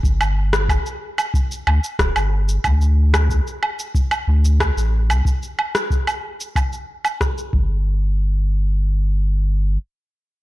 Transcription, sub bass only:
X:1
M:4/4
L:1/16
Q:1/4=92
K:Dphr
V:1 name="Sub bass" clef=bass
G,,,4- G,,, z4 z D,, z D,,, G,,,3 | D,,4- D,, z4 z D,,3 A,,,2 C,, | z12 z2 G,,,2- | G,,,12 z4 |]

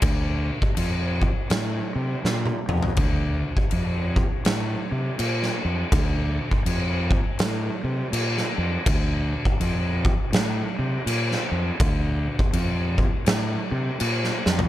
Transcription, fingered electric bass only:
X:1
M:4/4
L:1/8
Q:"Swing" 1/4=82
K:Dm
V:1 name="Fingered electric bass" clef=bass
D,,2 F,,2 A,, C, B,, F,, | D,,2 F,,2 A,, C, B,, F,, | D,,2 F,,2 A,, C, B,, F,, | D,,2 F,,2 A,, C, B,, F,, |
D,,2 F,,2 A,, C, B,, F,, |]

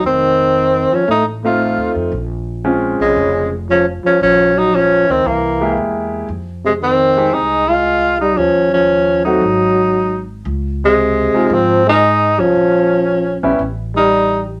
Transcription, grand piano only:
X:1
M:4/4
L:1/8
Q:"Swing" 1/4=115
K:Bbm
V:1 name="Grand piano"
z4 z [=A,CEF]3 | z2 [A,CDF]3 z3 | z4 z [A,B,=E=G]3 | [K:Fm] z3 [A,CEG] z4 |
z3 [=A,CE_G] z4 | z3 [A,CEF] z4 | z3 [G,_CD=E] z4 |]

